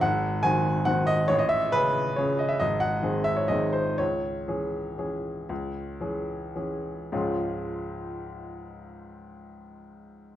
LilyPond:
\new Staff \with { instrumentName = "Grand piano" } { \time 3/4 \key gis \phrygian \tempo 4 = 120 << { fis''4 gis''4 fis''8 dis''8 | cis''16 dis''16 e''8 b'4 cis''8 dis''16 e''16 | dis''8 fis''4 e''16 cis''16 dis''8 bis'8 | cis''2.~ |
cis''2 r4 | <cis, gis, eis gis cis' eis'>2.~ | <cis, gis, eis gis cis' eis'>2. | } \\ { gis,,4 <dis bis fis'>4 <dis bis fis'>4 | a,,4 <cis cis' gis'>4 <cis cis' gis'>4 | gis,,4 <dis bis gis'>4 <dis bis gis'>4 | cis,4 <e cis' gis'>4 <e cis' gis'>4 |
cis,4 <e cis' gis'>4 <e cis' gis'>4 | r2. | r2. | } >> }